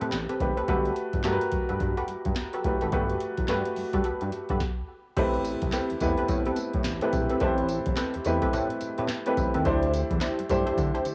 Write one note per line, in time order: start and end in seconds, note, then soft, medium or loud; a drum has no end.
0.00 0.11 A2 medium
0.00 0.40 A3 medium
0.00 0.41 C4 medium
0.00 0.13 C4 medium
0.00 0.41 G4 medium
0.00 0.13 G4 medium
0.00 0.13 A4 medium
0.00 0.42 B4 medium
0.00 0.13 B4 medium
0.00 closed hi-hat soft
0.12 0.27 A1 loud
0.12 snare loud
0.12 clap medium
0.12 closed hi-hat medium
0.29 0.41 C4 medium
0.29 0.41 G4 medium
0.29 0.41 A4 medium
0.29 0.42 B4 medium
0.29 closed hi-hat medium
0.40 0.55 G#1 medium
0.40 0.63 A3 medium
0.40 0.63 C4 medium
0.40 0.63 G4 medium
0.40 0.63 B4 medium
0.40 kick medium
0.40 closed hi-hat medium
0.57 0.69 C4 medium
0.57 0.67 G4 medium
0.57 0.67 A4 medium
0.57 0.68 B4 medium
0.57 closed hi-hat soft
0.68 0.92 G1 loud
0.68 1.13 A3 medium
0.68 0.94 F#4 medium
0.68 1.14 F#4 medium
0.68 0.95 G4 medium
0.68 1.14 G4 medium
0.68 0.95 A4 medium
0.68 0.95 B4 loud
0.68 1.14 B4 loud
0.68 kick loud
0.68 closed hi-hat medium
0.85 closed hi-hat medium
0.96 closed hi-hat medium
1.13 1.23 G1 medium
1.13 kick medium
1.13 closed hi-hat medium
1.24 1.39 G2 medium
1.24 2.09 A3 medium
1.24 1.42 F#4 medium
1.24 2.09 F#4 medium
1.24 1.42 G4 medium
1.24 2.09 G4 medium
1.24 1.42 A4 medium
1.24 1.33 A#4 medium
1.24 1.42 B4 medium
1.24 snare loud
1.24 clap loud
1.24 closed hi-hat medium
1.33 2.12 B4 loud
1.41 closed hi-hat medium
1.52 1.59 G2 soft
1.52 kick medium
1.52 closed hi-hat medium
1.69 1.79 G2 loud
1.69 1.81 F#4 medium
1.69 1.81 G4 medium
1.69 1.82 A4 medium
1.69 1.82 B4 medium
1.69 closed hi-hat medium
1.80 1.95 G2 loud
1.80 kick loud
1.80 closed hi-hat medium
1.97 2.09 F#4 medium
1.97 2.10 G4 medium
1.97 2.10 A4 medium
1.97 2.10 B4 medium
1.97 closed hi-hat soft
2.08 2.16 G2 soft
2.08 closed hi-hat medium
2.25 2.35 G2 loud
2.25 kick loud
2.25 closed hi-hat soft
2.36 snare loud
2.36 clap medium
2.36 closed hi-hat medium
2.53 2.66 F#4 medium
2.53 2.66 G4 medium
2.53 2.66 A4 medium
2.53 2.66 B4 medium
2.53 closed hi-hat medium
2.64 2.79 A1 medium
2.64 2.87 A3 medium
2.64 2.87 F#4 medium
2.64 2.88 G4 medium
2.64 2.88 B4 medium
2.64 kick medium
2.64 closed hi-hat medium
2.81 2.91 G#1 medium
2.81 2.91 F#4 medium
2.81 2.92 G4 medium
2.81 2.92 A4 medium
2.81 2.92 B4 medium
2.81 closed hi-hat medium
2.92 3.16 G1 loud
2.92 3.37 A3 medium
2.92 3.19 F#4 medium
2.92 3.38 F#4 medium
2.92 3.19 G4 medium
2.92 3.38 G4 medium
2.92 3.19 A4 medium
2.92 3.19 B4 loud
2.92 3.38 B4 medium
2.92 kick loud
2.92 closed hi-hat medium
3.09 closed hi-hat medium
3.20 closed hi-hat medium
3.37 3.47 A1 loud
3.37 kick medium
3.37 closed hi-hat medium
3.48 3.63 G2 loud
3.48 4.33 A3 medium
3.48 3.66 F#4 medium
3.48 4.33 F#4 medium
3.48 3.66 G4 medium
3.48 4.33 G4 medium
3.48 3.67 A4 medium
3.48 3.67 B4 medium
3.48 4.33 B4 loud
3.48 snare loud
3.48 clap medium
3.48 closed hi-hat medium
3.65 closed hi-hat medium
3.76 3.84 G2 soft
3.76 open hi-hat medium
3.93 4.03 G2 medium
3.93 4.03 F#4 medium
3.93 4.03 G4 medium
3.93 4.04 A4 medium
3.93 4.04 B4 medium
3.93 kick medium
3.93 closed hi-hat medium
4.04 4.22 F#4 medium
4.04 4.22 G4 medium
4.04 4.23 A4 medium
4.04 4.23 B4 medium
4.04 closed hi-hat medium
4.21 4.31 G2 medium
4.21 closed hi-hat soft
4.32 closed hi-hat medium
4.49 4.59 G2 loud
4.49 4.62 F#4 medium
4.49 4.62 G4 medium
4.49 4.62 A4 medium
4.49 4.62 B4 medium
4.49 kick loud
4.49 closed hi-hat soft
4.60 kick loud
4.60 snare medium
5.17 5.55 A1 loud
5.17 5.82 A3 medium
5.17 5.43 C4 loud
5.17 5.82 C4 medium
5.17 5.82 E4 medium
5.17 5.43 G4 medium
5.17 5.82 G4 medium
5.17 5.43 A4 medium
5.17 5.43 B4 loud
5.17 5.82 B4 loud
5.17 kick loud
5.17 closed hi-hat medium
5.17 crash loud
5.34 closed hi-hat medium
5.45 closed hi-hat medium
5.45 tambourine medium
5.62 5.71 C2 loud
5.62 kick loud
5.62 closed hi-hat medium
5.72 5.91 C4 medium
5.72 5.91 G4 medium
5.72 5.91 A4 medium
5.72 5.91 B4 medium
5.72 snare loud
5.72 clap medium
5.72 closed hi-hat medium
5.72 tambourine loud
5.90 5.95 E2 medium
5.90 closed hi-hat medium
6.00 6.15 E2 medium
6.00 6.77 A3 medium
6.00 6.09 B3 medium
6.00 6.77 E4 medium
6.00 6.77 G4 medium
6.00 6.77 B4 loud
6.00 kick loud
6.00 closed hi-hat medium
6.00 tambourine medium
6.08 6.80 C4 medium
6.18 6.30 C4 medium
6.18 6.30 G4 medium
6.18 6.30 A4 medium
6.18 6.30 B4 medium
6.18 closed hi-hat medium
6.28 6.43 A2 loud
6.28 kick medium
6.28 closed hi-hat medium
6.28 tambourine medium
6.45 6.58 C4 medium
6.45 6.58 G4 medium
6.45 6.58 A4 medium
6.45 6.58 B4 medium
6.45 closed hi-hat soft
6.56 6.65 A2 soft
6.56 closed hi-hat medium
6.56 tambourine medium
6.73 6.83 A2 loud
6.73 kick loud
6.73 closed hi-hat soft
6.84 7.00 A1 medium
6.84 snare loud
6.84 clap medium
6.84 closed hi-hat medium
6.84 tambourine medium
7.01 7.33 A3 medium
7.01 7.14 C4 medium
7.01 7.33 C4 medium
7.01 7.33 E4 medium
7.01 7.14 G4 medium
7.01 7.34 G4 medium
7.01 7.14 A4 medium
7.01 7.14 B4 medium
7.01 7.34 B4 medium
7.01 closed hi-hat medium
7.13 7.27 A#1 loud
7.13 kick loud
7.13 closed hi-hat medium
7.13 tambourine medium
7.29 7.39 C4 medium
7.29 7.40 G4 medium
7.29 7.40 A4 medium
7.29 7.40 B4 medium
7.29 closed hi-hat medium
7.40 7.79 A1 loud
7.40 8.06 A3 medium
7.40 7.67 C4 loud
7.40 8.06 C4 medium
7.40 8.06 E4 medium
7.40 7.67 G4 medium
7.40 8.06 G4 medium
7.40 7.67 A4 medium
7.40 7.67 B4 loud
7.40 8.06 C5 loud
7.40 kick loud
7.40 closed hi-hat medium
7.58 closed hi-hat medium
7.69 closed hi-hat medium
7.69 tambourine medium
7.86 7.96 A1 medium
7.86 kick medium
7.86 closed hi-hat medium
7.97 8.15 C4 medium
7.97 8.15 G4 medium
7.97 8.15 A4 medium
7.97 8.15 B4 medium
7.97 snare loud
7.97 clap medium
7.97 closed hi-hat medium
7.97 tambourine loud
8.14 8.19 E2 medium
8.14 closed hi-hat medium
8.25 8.40 E2 medium
8.25 9.01 A3 medium
8.25 9.01 C4 medium
8.25 9.02 E4 medium
8.25 9.02 G4 medium
8.25 9.02 B4 medium
8.25 closed hi-hat medium
8.25 tambourine medium
8.42 8.51 C4 medium
8.42 8.52 G4 medium
8.42 8.52 A4 medium
8.42 8.52 B4 loud
8.42 kick loud
8.42 closed hi-hat medium
8.53 8.68 A2 loud
8.53 8.71 C4 medium
8.53 8.71 G4 medium
8.53 8.71 A4 medium
8.53 8.71 B4 medium
8.53 closed hi-hat medium
8.53 tambourine medium
8.70 closed hi-hat soft
8.81 8.89 A2 medium
8.81 closed hi-hat medium
8.81 tambourine medium
8.98 9.08 A2 loud
8.98 9.10 C4 medium
8.98 9.11 G4 medium
8.98 9.11 A4 medium
8.98 9.11 B4 medium
8.98 closed hi-hat soft
9.09 snare loud
9.09 clap medium
9.09 closed hi-hat medium
9.09 tambourine loud
9.26 9.57 A3 medium
9.26 9.38 C4 medium
9.26 9.58 C4 medium
9.26 9.58 E4 medium
9.26 9.39 G4 medium
9.26 9.58 G4 medium
9.26 9.39 A4 medium
9.26 9.39 B4 loud
9.26 9.58 B4 medium
9.26 closed hi-hat medium
9.37 9.52 A1 medium
9.37 kick loud
9.37 closed hi-hat medium
9.37 tambourine medium
9.54 9.64 D#2 medium
9.54 9.66 C4 medium
9.54 9.64 G4 medium
9.54 9.67 A4 medium
9.54 9.67 B4 medium
9.54 closed hi-hat medium
9.65 10.03 D2 loud
9.65 10.30 A3 medium
9.65 9.91 D4 loud
9.65 10.30 D4 medium
9.65 9.92 E4 medium
9.65 10.30 E4 medium
9.65 9.92 G4 medium
9.65 10.30 G4 medium
9.65 9.92 C5 loud
9.65 10.31 C5 loud
9.65 kick loud
9.65 closed hi-hat medium
9.83 closed hi-hat medium
9.94 closed hi-hat medium
9.94 tambourine medium
10.11 10.20 E2 medium
10.11 kick loud
10.11 closed hi-hat medium
10.21 10.39 D4 medium
10.21 10.39 E4 medium
10.21 10.39 G4 medium
10.21 10.39 C5 medium
10.21 snare loud
10.21 clap loud
10.21 closed hi-hat medium
10.21 tambourine loud
10.39 10.44 G2 soft
10.39 closed hi-hat medium
10.49 10.64 G2 medium
10.49 11.15 A3 medium
10.49 11.15 D4 medium
10.49 11.15 E4 medium
10.49 11.15 G4 medium
10.49 11.15 C5 loud
10.49 kick medium
10.49 closed hi-hat medium
10.49 tambourine medium
10.66 10.79 D4 medium
10.66 10.79 E4 medium
10.66 10.79 G4 medium
10.66 10.79 C5 medium
10.66 closed hi-hat medium
10.77 10.92 D3 loud
10.77 kick loud
10.77 closed hi-hat medium
10.77 tambourine medium
10.94 11.07 D4 medium
10.94 11.07 E4 medium
10.94 11.07 G4 medium
10.94 11.07 C5 medium
10.94 closed hi-hat soft
11.05 11.13 D3 medium
11.05 closed hi-hat medium
11.05 tambourine medium